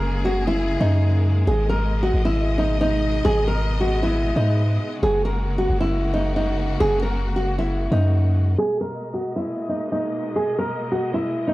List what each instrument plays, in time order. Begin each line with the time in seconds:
Already playing: 808-style bass F#1, string section C#3 G#3 A#3 G#4, nylon-string guitar A#4
0.25 nylon-string guitar F#4
0.47 nylon-string guitar E4
0.80 808-style bass F#2, nylon-string guitar D#4
1.47 808-style bass G#1, string section B2 D#5, nylon-string guitar G#4
1.69 nylon-string guitar A#4
2.03 nylon-string guitar F#4
2.14 808-style bass G#1
2.25 nylon-string guitar E4
2.58 nylon-string guitar D#4
2.81 nylon-string guitar D#4
3.25 808-style bass G#1, string section B3, nylon-string guitar G#4
3.47 nylon-string guitar A#4
3.80 nylon-string guitar F#4
4.03 nylon-string guitar E4
4.36 808-style bass G#2, nylon-string guitar D#4
5.03 808-style bass F#1, string section C#3 A#3 F#4, nylon-string guitar G#4
5.25 nylon-string guitar A#4
5.58 nylon-string guitar F#4
5.69 808-style bass F#1
5.81 nylon-string guitar E4
6.14 nylon-string guitar D#4
6.36 nylon-string guitar D#4
6.80 808-style bass F#1, nylon-string guitar G#4
7.03 nylon-string guitar A#4
7.36 nylon-string guitar F#4
7.58 nylon-string guitar E4
7.92 808-style bass F#2, nylon-string guitar D#4
8.58 string section B2 G#3 A#3 D#5, nylon-string guitar G#4
8.81 nylon-string guitar A#4
9.14 nylon-string guitar F#4
9.36 nylon-string guitar E4
9.69 nylon-string guitar D#4
9.92 nylon-string guitar D#4
10.36 nylon-string guitar G#4
10.59 nylon-string guitar A#4
10.92 nylon-string guitar F#4
11.14 nylon-string guitar E4
11.47 nylon-string guitar D#4